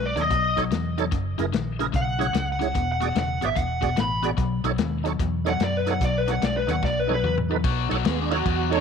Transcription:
Already playing: fingered electric bass B1, overdriven electric guitar B2 G#3
0.06 lead electric guitar D5
0.15 fingered electric bass D#2, overdriven electric guitar B2 F#3, tonewheel organ D#4 A4 C#5, snare, closed hi-hat
0.21 lead electric guitar D#5
0.30 fingered electric bass B1, overdriven electric guitar B2 F#3, kick, snare, closed hi-hat
0.56 overdriven electric guitar B2 F#3, tonewheel organ D#4 A4 C#5, kick, snare, closed hi-hat
0.71 fingered electric bass E2, overdriven electric guitar B2 F#3, snare, closed hi-hat
0.98 overdriven electric guitar B2 F#3, tonewheel organ D#4 A4 C#5, snare, closed hi-hat
1.11 fingered electric bass F#1, overdriven electric guitar F#2 C#3, kick, snare, closed hi-hat
1.38 fingered electric bass F#1, overdriven electric guitar F#2 C#3, tonewheel organ E4 G#4 A#4, snare, closed hi-hat
1.52 fingered electric bass A#1, overdriven electric guitar F#2 D#3, snare, closed hi-hat
1.79 overdriven electric guitar F#2 C#3, tonewheel organ E4 G#4 A#4, snare, closed hi-hat
1.92 fingered electric bass B1, overdriven electric guitar F#2 C#3, lead electric guitar F#5, kick, snare, closed hi-hat
2.18 overdriven electric guitar F#2 C#3, tonewheel organ E4 G#4 C#5, snare, closed hi-hat
2.33 fingered electric bass C#2, overdriven electric guitar F#2 C#3, snare, closed hi-hat
2.52 lead electric guitar F#5
2.59 overdriven electric guitar F#2 C#3, tonewheel organ E4 G#4 C#5, snare, closed hi-hat
2.74 fingered electric bass E1, overdriven electric guitar E2 B2, kick, snare, closed hi-hat
2.92 lead electric guitar F#5
3.00 overdriven electric guitar E2 B2, tonewheel organ F#4 G#4 D5, snare, closed hi-hat
3.15 fingered electric bass E1, overdriven electric guitar E2 C#3, lead electric guitar F#5, snare, closed hi-hat
3.41 fingered electric bass G#1, overdriven electric guitar E2 B2, tonewheel organ F#4 G#4 D5, snare, closed hi-hat
3.46 lead electric guitar E5
3.55 fingered electric bass E1, overdriven electric guitar E2 B2, lead electric guitar F#5, kick, snare, closed hi-hat
3.81 overdriven electric guitar E2 B2, tonewheel organ F#4 G#4 D5, kick, snare, closed hi-hat
3.96 fingered electric bass A1, overdriven electric guitar E2 B2, snare, closed hi-hat
4.00 lead electric guitar B5
4.23 overdriven electric guitar E2 B2, tonewheel organ F#4 G#4 D5, snare, closed hi-hat
4.37 fingered electric bass B1, overdriven electric guitar B2 F#3, kick, snare, closed hi-hat
4.64 fingered electric bass B1, overdriven electric guitar B2 F#3, tonewheel organ D#4 A4 C#5, snare, closed hi-hat
4.78 fingered electric bass D#2, overdriven electric guitar B2 G#3, snare, closed hi-hat
5.04 overdriven electric guitar B2 F#3, tonewheel organ D#4 A4 C#5, snare, closed hi-hat
5.19 fingered electric bass E2, overdriven electric guitar B2 F#3, kick, snare, closed hi-hat
5.45 overdriven electric guitar B2 F#3, tonewheel organ D#4 A4 C#5, snare, closed hi-hat
5.49 lead electric guitar F#5
5.60 fingered electric bass F#2, overdriven electric guitar B2 F#3, snare, closed hi-hat
5.64 lead electric guitar D5
5.77 lead electric guitar B4
5.86 overdriven electric guitar B2 F#3, tonewheel organ D#4 A4 C#5, snare, closed hi-hat
5.91 lead electric guitar F#5
6.01 fingered electric bass B1, overdriven electric guitar B2 F#3, lead electric guitar D5, kick, snare, closed hi-hat
6.18 lead electric guitar B4
6.27 overdriven electric guitar B2 F#3, tonewheel organ D#4 A4 C#5, lead electric guitar F#5, snare, closed hi-hat
6.42 fingered electric bass B1, overdriven electric guitar B2 G#3, lead electric guitar D5, snare, closed hi-hat
6.57 lead electric guitar B4
6.67 fingered electric bass D#2, overdriven electric guitar B2 F#3, tonewheel organ D#4 A4 C#5, lead electric guitar F#5, snare, closed hi-hat
6.83 fingered electric bass B1, overdriven electric guitar B2 F#3, lead electric guitar D5, kick, snare
7.00 lead electric guitar B4
7.07 overdriven electric guitar B2 F#3, tonewheel organ D#4 A4 C#5, high tom
7.14 lead electric guitar B4
7.23 fingered electric bass E2, overdriven electric guitar B2 F#3, mid tom
7.38 mid tom
7.49 overdriven electric guitar B2 F#3, tonewheel organ D#4 A4 B4
7.64 fingered electric bass B1, overdriven electric guitar B2 F#3, kick, snare, ride
7.89 fingered electric bass B1, overdriven electric guitar B2 F#3, tonewheel organ D#4 A4 C#5, snare, ride
8.05 fingered electric bass D#2, overdriven electric guitar B2 G#3, tonewheel organ B3, snare, ride
8.22 tonewheel organ D4
8.30 overdriven electric guitar B2 F#3, tonewheel organ D#4 F4 A4 C#5, snare, ride
8.35 tonewheel organ F#4
8.45 fingered electric bass E2, overdriven electric guitar B2 F#3, kick, snare, ride
8.70 overdriven electric guitar B2 F#3, tonewheel organ D#4 A4 C#5, snare, ride
8.77 tonewheel organ D4

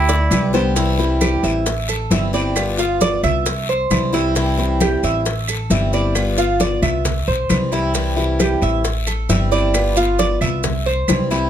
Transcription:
Already playing: upright bass D2, muted trumpet E4
0.09 cuban tres D5, high bongo, high conga, maracas
0.31 upright bass C2, steel-string acoustic guitar D3 G3 B3 G4, low bongo, high conga, short guiro, claves, maracas
0.53 steel-string acoustic guitar D3 G3 B3 G4, cuban tres C5, low bongo, high conga, short guiro, maracas
0.76 steel-string acoustic guitar C3 E3 G3 C4 E4, cuban tres E4, high bongo, high conga, long guiro, maracas
0.98 steel-string acoustic guitar E3 G3 C4 E4, high bongo, high conga
1.21 cuban tres G4, high bongo, high conga, short guiro, claves, maracas
1.43 upright bass A1, cuban tres E5, high conga, short guiro, maracas
1.66 muted steel-string acoustic guitar stroke, high bongo, high conga, long guiro, maracas
1.89 cuban tres A4, high bongo, high conga, claves, maracas
2.10 upright bass G1, steel-string acoustic guitar E3 G3 C4 E4, cuban tres E5, high bongo, low bongo, high conga, short guiro, maracas
2.33 steel-string acoustic guitar G3 C4 E4, cuban tres D5, high bongo, short guiro, maracas
2.55 steel-string acoustic guitar G3 B3 F4, high bongo, high conga, long guiro, claves, maracas
2.78 steel-string acoustic guitar B3 F4, cuban tres F4, high bongo, high conga, maracas
3.01 cuban tres D5, high bongo, high conga, short guiro, maracas
3.23 upright bass C2, cuban tres E5, high conga, low conga, short guiro, claves, maracas
3.46 muted steel-string acoustic guitar stroke, high bongo, high conga, long guiro, maracas
3.69 cuban tres C5, high bongo, high conga
3.90 upright bass C2, steel-string acoustic guitar E3 G3 C4 E4, high bongo, low bongo, high conga, short guiro, claves, maracas
4.13 steel-string acoustic guitar E3 G3 C4 E4, cuban tres E4, high bongo, short guiro, maracas
4.35 steel-string acoustic guitar C3 E3 G3 C4 E4, cuban tres E4, high bongo, high conga, long guiro, maracas
4.58 steel-string acoustic guitar E3 G3 C4 E4, high bongo, high conga
4.80 cuban tres G4, high bongo, high conga, short guiro, claves, maracas
5.03 upright bass A1, cuban tres E5, high conga, short guiro, maracas
5.25 muted steel-string acoustic guitar stroke, high bongo, high conga, long guiro, maracas
5.48 cuban tres A4, high bongo, high conga, claves, maracas
5.70 upright bass G1, steel-string acoustic guitar E3 G3 C4 E4, cuban tres E5, high bongo, low bongo, high conga, short guiro, maracas
5.93 steel-string acoustic guitar G3 C4 E4, cuban tres D5, high bongo, short guiro, maracas
6.15 steel-string acoustic guitar G3 B3 F4, high bongo, high conga, long guiro, claves, maracas
6.37 steel-string acoustic guitar B3 F4, cuban tres F4, high bongo, high conga, maracas
6.60 cuban tres D5, high bongo, high conga, short guiro, maracas
6.82 upright bass C2, cuban tres E5, high conga, low conga, short guiro, claves, maracas
7.05 muted steel-string acoustic guitar stroke, high bongo, high conga, low conga, long guiro, maracas
7.27 upright bass B1, cuban tres C5, high bongo, high conga
7.49 upright bass C2, steel-string acoustic guitar E3 G3 C4 E4, high bongo, low bongo, high conga, short guiro, claves, maracas
7.72 steel-string acoustic guitar E3 G3 C4 E4, cuban tres E4, high bongo, high conga, short guiro, maracas
7.94 steel-string acoustic guitar C3 E3 G3 C4 E4, cuban tres E4, high bongo, high conga, long guiro, maracas
8.16 steel-string acoustic guitar E3 G3 C4 E4, high bongo, high conga
8.39 cuban tres G4, high bongo, high conga, short guiro, claves, maracas
8.62 upright bass A1, cuban tres E5, high conga, short guiro, maracas
8.84 muted steel-string acoustic guitar stroke, high bongo, high conga, long guiro, maracas
9.07 cuban tres A4, high bongo, high conga, claves, maracas
9.29 upright bass G1, steel-string acoustic guitar E3 G3 C4 E4, cuban tres E5, high bongo, low bongo, high conga, short guiro, maracas
9.51 steel-string acoustic guitar G3 C4 E4, cuban tres D5, high bongo, short guiro, maracas
9.74 steel-string acoustic guitar G3 B3 F4, high bongo, high conga, long guiro, claves, maracas
9.96 steel-string acoustic guitar B3 F4, cuban tres F4, high bongo, high conga, maracas
10.19 cuban tres D5, high bongo, high conga, short guiro, maracas
10.41 upright bass C2, cuban tres E5, high conga, low conga, short guiro, claves, maracas
10.63 muted steel-string acoustic guitar stroke, high bongo, high conga, low conga, long guiro, maracas
10.86 cuban tres C5, high bongo, high conga
11.08 upright bass C2, steel-string acoustic guitar E3 G3 C4 E4, high bongo, low bongo, high conga, short guiro, claves, maracas
11.30 steel-string acoustic guitar E3 G3 C4 E4, cuban tres E4, high bongo, high conga, short guiro, maracas

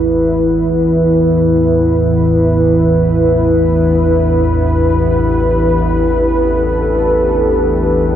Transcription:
Already playing: synth drone A1 E2, analog synth pad E4 G#4 B4
2.23 analog synth pad E3
3.48 analog synth pad D4
4.60 analog synth pad G4
6.49 analog synth pad A4

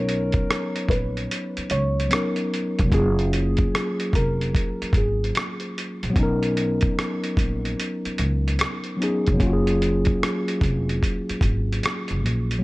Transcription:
Already playing: upright bass B1, tine electric piano F#3 B3 C#4 D#4 C#5, felt piano A#4
0.09 closed hi-hat
0.32 kick, closed hi-hat
0.51 cross-stick, closed hi-hat
0.76 closed hi-hat
0.89 upright bass A#1, felt piano B4, kick, closed hi-hat
1.17 closed hi-hat
1.31 closed hi-hat
1.57 muted upright bass stroke, closed hi-hat
1.70 upright bass C#2, felt piano C#5, closed hi-hat
2.00 closed hi-hat
2.08 tine electric piano F#3 B3 C#4, closed hi-hat
2.13 tine electric piano D#4 A#4, cross-stick
2.36 closed hi-hat
2.54 closed hi-hat
2.79 upright bass F1, kick, closed hi-hat
2.86 tine electric piano F#3 A#3
2.92 upright bass F#1, tine electric piano C#4 F4, felt piano G#4, kick, closed hi-hat
2.99 tine electric piano G#4
3.19 closed hi-hat
3.33 closed hi-hat
3.57 kick, closed hi-hat
3.75 cross-stick, closed hi-hat
4.00 closed hi-hat
4.13 upright bass F1, felt piano A#4, kick, closed hi-hat
4.41 closed hi-hat
4.55 kick, closed hi-hat
4.82 muted upright bass stroke, closed hi-hat
4.93 upright bass G#1, kick, closed hi-hat
4.97 felt piano G#4
5.24 closed hi-hat
5.35 cross-stick, closed hi-hat
5.60 closed hi-hat
5.78 closed hi-hat
6.03 upright bass A#1, closed hi-hat
6.10 tine electric piano F#3 B3
6.16 upright bass B1, tine electric piano C#4 D#4, kick, closed hi-hat
6.23 tine electric piano A#4
6.43 closed hi-hat
6.57 closed hi-hat
6.81 kick, closed hi-hat
6.99 cross-stick, closed hi-hat
7.24 closed hi-hat
7.37 upright bass A#1, kick, closed hi-hat
7.65 closed hi-hat
7.80 closed hi-hat
8.05 muted upright bass stroke, closed hi-hat
8.18 upright bass C#2, closed hi-hat
8.48 closed hi-hat
8.59 cross-stick, closed hi-hat
8.84 closed hi-hat
8.97 tine electric piano F#3 B3 C#4
9.02 tine electric piano D#4 G#4, closed hi-hat
9.26 upright bass F1, kick, closed hi-hat
9.34 tine electric piano F#3 A#3
9.40 upright bass F#1, tine electric piano C#4 F4, kick, closed hi-hat
9.47 tine electric piano F#4
9.53 tine electric piano G#4
9.67 closed hi-hat
9.82 closed hi-hat
10.05 kick, closed hi-hat
10.23 cross-stick, closed hi-hat
10.48 closed hi-hat
10.61 upright bass F1, kick, closed hi-hat
10.89 closed hi-hat
11.03 kick, closed hi-hat
11.29 muted upright bass stroke, closed hi-hat
11.41 upright bass G#1, kick, closed hi-hat
11.72 closed hi-hat
11.83 cross-stick, closed hi-hat
12.08 upright bass F#1, closed hi-hat
12.24 upright bass A#1, closed hi-hat
12.51 closed hi-hat
12.59 tine electric piano F#3

